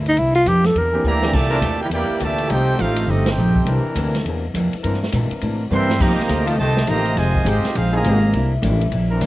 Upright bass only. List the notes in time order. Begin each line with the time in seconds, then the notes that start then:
Already playing: D2
0.17 C2
0.46 F2
0.75 E2
1.04 D2
1.34 C2
1.61 D#2
1.90 E2
2.09 muted upright bass stroke
2.21 D2
2.50 C2
2.79 A1
3.07 G1
3.36 A#1
3.65 C2
3.95 D2
4.25 E2
4.54 F2
4.73 muted upright bass stroke
4.84 G2
5.13 A#2
5.31 muted upright bass stroke
5.42 A2
5.71 G2
6.00 F2
6.18 muted upright bass stroke
6.29 D2
6.58 C2
6.88 A1
7.16 F1
7.45 G#1
7.75 A#1
8.03 G#1
8.34 C2
8.62 A1
8.92 A#1
9.21 D2